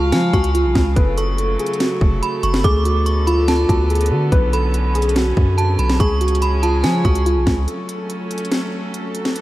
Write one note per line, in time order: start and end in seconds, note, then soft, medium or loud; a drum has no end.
0.00 0.14 C#2 loud
0.00 2.61 C#3 medium
0.00 0.95 G#3 medium
0.00 0.31 F4 medium
0.00 0.95 F5 medium
0.00 0.11 A5 medium
0.12 0.32 F3 loud
0.12 0.32 G#5 medium
0.12 snare loud
0.12 closed hi-hat medium
0.33 0.67 C#2 loud
0.33 0.50 F#4 medium
0.33 0.53 C#6 medium
0.33 kick loud
0.33 closed hi-hat soft
0.44 closed hi-hat medium
0.55 0.94 F4 medium
0.55 closed hi-hat medium
0.65 0.75 B1 loud
0.75 0.96 C#2 loud
0.75 kick loud
0.75 snare loud
0.96 1.57 F#1 loud
0.96 2.63 F#3 medium
0.96 4.29 A3 medium
0.96 5.96 A4 medium
0.96 1.13 B4 loud
0.96 kick loud
0.96 closed hi-hat medium
1.17 1.57 A4 medium
1.17 2.18 C#6 medium
1.17 closed hi-hat medium
1.38 closed hi-hat medium
1.59 1.76 G#4 medium
1.59 closed hi-hat medium
1.66 closed hi-hat medium
1.73 closed hi-hat soft
1.80 2.60 F#4 medium
1.80 snare loud
1.80 closed hi-hat medium
2.01 2.21 F1 loud
2.01 kick loud
2.23 2.42 B5 medium
2.23 closed hi-hat medium
2.43 2.63 F#1 loud
2.43 2.63 C#6 medium
2.43 closed hi-hat medium
2.54 snare loud
2.64 3.65 D2 loud
2.64 5.97 D3 medium
2.64 5.97 B3 medium
2.64 2.81 G#4 loud
2.64 3.04 D6 loud
2.64 kick loud
2.64 closed hi-hat medium
2.85 3.25 F#4 medium
2.85 closed hi-hat medium
3.06 3.26 C#6 medium
3.06 closed hi-hat medium
3.27 3.67 F4 medium
3.27 3.47 B5 medium
3.27 closed hi-hat medium
3.48 3.68 A5 medium
3.48 snare loud
3.48 closed hi-hat medium
3.69 4.13 D2 loud
3.69 3.86 F#4 medium
3.69 4.28 A5 medium
3.69 kick loud
3.69 closed hi-hat medium
3.90 4.07 G#4 medium
3.90 closed hi-hat soft
3.95 closed hi-hat medium
4.01 closed hi-hat medium
4.06 closed hi-hat medium
4.11 4.31 D3 loud
4.11 4.28 F#4 medium
4.32 5.33 B1 loud
4.32 5.98 C#4 medium
4.32 4.49 B4 loud
4.32 kick loud
4.32 closed hi-hat medium
4.53 4.93 A4 medium
4.53 5.54 B5 medium
4.53 closed hi-hat medium
4.74 closed hi-hat medium
4.95 5.12 G#4 medium
4.95 closed hi-hat medium
5.02 closed hi-hat medium
5.09 closed hi-hat soft
5.16 5.96 F#4 medium
5.16 snare loud
5.16 closed hi-hat medium
5.37 5.77 F#2 loud
5.37 kick loud
5.58 5.78 A5 medium
5.58 closed hi-hat medium
5.79 5.99 B1 loud
5.79 5.99 B5 medium
5.79 closed hi-hat medium
5.90 snare loud
6.00 6.85 C#2 loud
6.00 7.66 C#3 medium
6.00 7.66 G#3 medium
6.00 7.66 C#4 medium
6.00 7.66 G#4 medium
6.00 6.17 G#4 loud
6.00 6.39 C#6 loud
6.00 kick loud
6.00 closed hi-hat medium
6.21 6.60 F#4 medium
6.21 closed hi-hat medium
6.28 closed hi-hat medium
6.35 closed hi-hat medium
6.42 6.62 B5 medium
6.42 closed hi-hat medium
6.63 7.02 F4 medium
6.63 6.83 A5 medium
6.63 closed hi-hat medium
6.84 7.04 F3 loud
6.84 7.04 G#5 medium
6.84 snare loud
6.84 closed hi-hat medium
7.05 7.38 C#2 loud
7.05 7.22 F#4 medium
7.05 7.25 C#6 medium
7.05 kick loud
7.05 closed hi-hat soft
7.15 closed hi-hat medium
7.26 7.65 F4 medium
7.26 closed hi-hat medium
7.36 7.46 B1 loud
7.47 7.67 C#2 loud
7.47 kick loud
7.47 snare loud
7.68 9.41 F#3 medium
7.68 9.34 A3 medium
7.68 9.34 C#4 medium
7.68 9.41 A4 medium
7.68 closed hi-hat medium
7.89 closed hi-hat medium
8.10 closed hi-hat medium
8.31 closed hi-hat medium
8.38 closed hi-hat medium
8.45 closed hi-hat soft
8.52 snare loud
8.52 closed hi-hat medium
8.94 closed hi-hat medium
9.15 closed hi-hat medium
9.25 snare medium
9.36 9.41 B3 medium
9.36 9.41 D4 medium
9.36 closed hi-hat medium